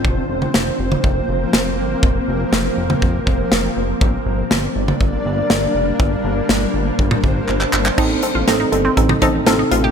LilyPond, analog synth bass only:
\new Staff \with { instrumentName = "Analog synth bass" } { \clef bass \time 4/4 \key g \minor \tempo 4 = 121 f,,8 f,,8 f,,8 f,,8 f,,8 f,,8 f,,8 g,,8 | f,,8 f,,8 f,,8 f,,8 f,,8 f,,8 f,,8 f,,8 | g,,8 g,,8 g,,8 g,,8 g,,8 g,,8 g,,8 f,,8 | g,,8 g,,8 g,,8 g,,8 g,,8 g,,8 g,,8 g,,8 |
a,,8 r16 a,,16 a,,8 g,,8 a,,8 a,,8 a,,8 a,,8 | }